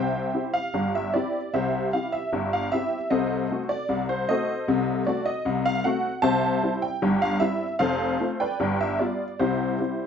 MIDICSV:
0, 0, Header, 1, 2, 480
1, 0, Start_track
1, 0, Key_signature, 0, "major"
1, 0, Tempo, 788436
1, 935, Time_signature, 2, 2, 24, 8
1, 6129, End_track
2, 0, Start_track
2, 0, Title_t, "Honky-tonk piano"
2, 0, Program_c, 0, 3
2, 0, Note_on_c, 0, 36, 71
2, 0, Note_on_c, 0, 48, 76
2, 0, Note_on_c, 0, 72, 64
2, 0, Note_on_c, 0, 76, 64
2, 0, Note_on_c, 0, 79, 76
2, 172, Note_off_c, 0, 36, 0
2, 173, Note_off_c, 0, 48, 0
2, 205, Note_on_c, 0, 60, 35
2, 209, Note_on_c, 0, 64, 43
2, 211, Note_on_c, 0, 67, 40
2, 255, Note_off_c, 0, 79, 0
2, 308, Note_off_c, 0, 72, 0
2, 308, Note_off_c, 0, 76, 0
2, 326, Note_on_c, 0, 77, 80
2, 340, Note_off_c, 0, 60, 0
2, 343, Note_off_c, 0, 64, 0
2, 344, Note_off_c, 0, 67, 0
2, 449, Note_on_c, 0, 31, 67
2, 450, Note_on_c, 0, 43, 69
2, 558, Note_off_c, 0, 77, 0
2, 580, Note_on_c, 0, 76, 83
2, 656, Note_off_c, 0, 31, 0
2, 656, Note_off_c, 0, 43, 0
2, 692, Note_on_c, 0, 74, 73
2, 695, Note_on_c, 0, 60, 49
2, 697, Note_off_c, 0, 76, 0
2, 700, Note_on_c, 0, 64, 45
2, 702, Note_on_c, 0, 67, 52
2, 827, Note_off_c, 0, 60, 0
2, 830, Note_off_c, 0, 64, 0
2, 832, Note_off_c, 0, 67, 0
2, 921, Note_off_c, 0, 74, 0
2, 935, Note_on_c, 0, 76, 80
2, 936, Note_on_c, 0, 36, 74
2, 937, Note_on_c, 0, 48, 77
2, 939, Note_on_c, 0, 67, 61
2, 941, Note_on_c, 0, 72, 60
2, 1127, Note_off_c, 0, 76, 0
2, 1140, Note_off_c, 0, 36, 0
2, 1140, Note_off_c, 0, 48, 0
2, 1160, Note_off_c, 0, 67, 0
2, 1161, Note_off_c, 0, 72, 0
2, 1176, Note_on_c, 0, 77, 69
2, 1178, Note_on_c, 0, 60, 38
2, 1180, Note_on_c, 0, 64, 37
2, 1184, Note_on_c, 0, 67, 43
2, 1293, Note_on_c, 0, 76, 77
2, 1295, Note_off_c, 0, 77, 0
2, 1309, Note_off_c, 0, 60, 0
2, 1311, Note_off_c, 0, 64, 0
2, 1313, Note_off_c, 0, 67, 0
2, 1416, Note_on_c, 0, 31, 73
2, 1417, Note_on_c, 0, 43, 73
2, 1522, Note_off_c, 0, 76, 0
2, 1541, Note_on_c, 0, 77, 78
2, 1619, Note_off_c, 0, 31, 0
2, 1620, Note_off_c, 0, 43, 0
2, 1655, Note_on_c, 0, 76, 89
2, 1657, Note_off_c, 0, 77, 0
2, 1659, Note_on_c, 0, 60, 46
2, 1661, Note_on_c, 0, 64, 46
2, 1664, Note_on_c, 0, 67, 57
2, 1790, Note_off_c, 0, 60, 0
2, 1790, Note_off_c, 0, 64, 0
2, 1793, Note_off_c, 0, 67, 0
2, 1882, Note_off_c, 0, 76, 0
2, 1890, Note_on_c, 0, 75, 80
2, 1891, Note_on_c, 0, 36, 72
2, 1891, Note_on_c, 0, 48, 86
2, 1897, Note_on_c, 0, 69, 64
2, 1897, Note_on_c, 0, 72, 60
2, 2095, Note_off_c, 0, 48, 0
2, 2096, Note_off_c, 0, 36, 0
2, 2135, Note_on_c, 0, 60, 44
2, 2137, Note_on_c, 0, 57, 38
2, 2141, Note_on_c, 0, 66, 48
2, 2178, Note_off_c, 0, 75, 0
2, 2230, Note_off_c, 0, 69, 0
2, 2230, Note_off_c, 0, 72, 0
2, 2247, Note_on_c, 0, 74, 83
2, 2266, Note_off_c, 0, 60, 0
2, 2267, Note_off_c, 0, 57, 0
2, 2270, Note_off_c, 0, 66, 0
2, 2367, Note_on_c, 0, 48, 71
2, 2368, Note_on_c, 0, 36, 78
2, 2440, Note_off_c, 0, 74, 0
2, 2491, Note_on_c, 0, 72, 77
2, 2572, Note_off_c, 0, 36, 0
2, 2572, Note_off_c, 0, 48, 0
2, 2608, Note_off_c, 0, 72, 0
2, 2610, Note_on_c, 0, 75, 90
2, 2613, Note_on_c, 0, 57, 52
2, 2615, Note_on_c, 0, 60, 46
2, 2617, Note_on_c, 0, 72, 63
2, 2620, Note_on_c, 0, 69, 59
2, 2621, Note_on_c, 0, 66, 49
2, 2743, Note_off_c, 0, 57, 0
2, 2745, Note_off_c, 0, 60, 0
2, 2749, Note_off_c, 0, 66, 0
2, 2849, Note_on_c, 0, 36, 80
2, 2851, Note_on_c, 0, 48, 90
2, 3051, Note_off_c, 0, 36, 0
2, 3052, Note_off_c, 0, 48, 0
2, 3063, Note_off_c, 0, 75, 0
2, 3066, Note_off_c, 0, 72, 0
2, 3067, Note_off_c, 0, 69, 0
2, 3084, Note_on_c, 0, 74, 77
2, 3086, Note_on_c, 0, 57, 45
2, 3089, Note_on_c, 0, 60, 49
2, 3092, Note_on_c, 0, 66, 54
2, 3200, Note_on_c, 0, 75, 82
2, 3205, Note_off_c, 0, 74, 0
2, 3217, Note_off_c, 0, 57, 0
2, 3219, Note_off_c, 0, 60, 0
2, 3222, Note_off_c, 0, 66, 0
2, 3319, Note_on_c, 0, 48, 74
2, 3321, Note_on_c, 0, 36, 83
2, 3429, Note_off_c, 0, 75, 0
2, 3443, Note_on_c, 0, 77, 96
2, 3524, Note_off_c, 0, 48, 0
2, 3525, Note_off_c, 0, 36, 0
2, 3557, Note_on_c, 0, 78, 86
2, 3562, Note_on_c, 0, 57, 53
2, 3563, Note_off_c, 0, 77, 0
2, 3564, Note_on_c, 0, 60, 51
2, 3566, Note_on_c, 0, 66, 57
2, 3693, Note_off_c, 0, 57, 0
2, 3695, Note_off_c, 0, 60, 0
2, 3697, Note_off_c, 0, 66, 0
2, 3750, Note_off_c, 0, 78, 0
2, 3788, Note_on_c, 0, 81, 111
2, 3790, Note_on_c, 0, 36, 76
2, 3792, Note_on_c, 0, 48, 88
2, 3796, Note_on_c, 0, 72, 80
2, 3796, Note_on_c, 0, 76, 83
2, 3998, Note_off_c, 0, 36, 0
2, 3999, Note_off_c, 0, 48, 0
2, 4037, Note_on_c, 0, 55, 48
2, 4039, Note_on_c, 0, 60, 55
2, 4039, Note_on_c, 0, 64, 54
2, 4079, Note_off_c, 0, 81, 0
2, 4132, Note_off_c, 0, 72, 0
2, 4132, Note_off_c, 0, 76, 0
2, 4153, Note_on_c, 0, 79, 85
2, 4169, Note_off_c, 0, 55, 0
2, 4171, Note_off_c, 0, 60, 0
2, 4171, Note_off_c, 0, 64, 0
2, 4275, Note_on_c, 0, 31, 88
2, 4275, Note_on_c, 0, 43, 81
2, 4383, Note_off_c, 0, 79, 0
2, 4395, Note_on_c, 0, 77, 91
2, 4479, Note_off_c, 0, 31, 0
2, 4479, Note_off_c, 0, 43, 0
2, 4504, Note_on_c, 0, 76, 93
2, 4507, Note_on_c, 0, 55, 55
2, 4507, Note_on_c, 0, 60, 49
2, 4511, Note_on_c, 0, 64, 55
2, 4516, Note_off_c, 0, 77, 0
2, 4641, Note_off_c, 0, 60, 0
2, 4642, Note_off_c, 0, 55, 0
2, 4645, Note_off_c, 0, 64, 0
2, 4701, Note_off_c, 0, 76, 0
2, 4743, Note_on_c, 0, 77, 90
2, 4746, Note_on_c, 0, 41, 86
2, 4747, Note_on_c, 0, 29, 86
2, 4751, Note_on_c, 0, 72, 75
2, 4752, Note_on_c, 0, 69, 67
2, 4955, Note_off_c, 0, 29, 0
2, 4955, Note_off_c, 0, 41, 0
2, 4992, Note_on_c, 0, 57, 50
2, 4994, Note_on_c, 0, 60, 46
2, 4997, Note_on_c, 0, 65, 49
2, 5037, Note_off_c, 0, 77, 0
2, 5090, Note_off_c, 0, 72, 0
2, 5091, Note_off_c, 0, 69, 0
2, 5114, Note_on_c, 0, 79, 82
2, 5118, Note_on_c, 0, 71, 62
2, 5121, Note_on_c, 0, 74, 65
2, 5126, Note_off_c, 0, 57, 0
2, 5128, Note_off_c, 0, 60, 0
2, 5130, Note_off_c, 0, 65, 0
2, 5235, Note_on_c, 0, 31, 80
2, 5236, Note_on_c, 0, 43, 86
2, 5342, Note_off_c, 0, 71, 0
2, 5344, Note_off_c, 0, 74, 0
2, 5346, Note_off_c, 0, 79, 0
2, 5361, Note_on_c, 0, 76, 85
2, 5442, Note_off_c, 0, 31, 0
2, 5443, Note_off_c, 0, 43, 0
2, 5475, Note_on_c, 0, 74, 66
2, 5480, Note_on_c, 0, 55, 47
2, 5481, Note_off_c, 0, 76, 0
2, 5482, Note_on_c, 0, 59, 43
2, 5484, Note_on_c, 0, 65, 52
2, 5613, Note_off_c, 0, 55, 0
2, 5615, Note_off_c, 0, 59, 0
2, 5617, Note_off_c, 0, 65, 0
2, 5708, Note_off_c, 0, 74, 0
2, 5719, Note_on_c, 0, 36, 75
2, 5719, Note_on_c, 0, 72, 73
2, 5722, Note_on_c, 0, 48, 78
2, 5725, Note_on_c, 0, 64, 57
2, 5726, Note_on_c, 0, 67, 56
2, 5928, Note_off_c, 0, 36, 0
2, 5929, Note_off_c, 0, 48, 0
2, 5960, Note_off_c, 0, 64, 0
2, 5964, Note_on_c, 0, 55, 35
2, 5967, Note_on_c, 0, 60, 38
2, 5970, Note_on_c, 0, 64, 40
2, 6099, Note_off_c, 0, 55, 0
2, 6101, Note_off_c, 0, 60, 0
2, 6103, Note_off_c, 0, 64, 0
2, 6129, Note_off_c, 0, 67, 0
2, 6129, Note_off_c, 0, 72, 0
2, 6129, End_track
0, 0, End_of_file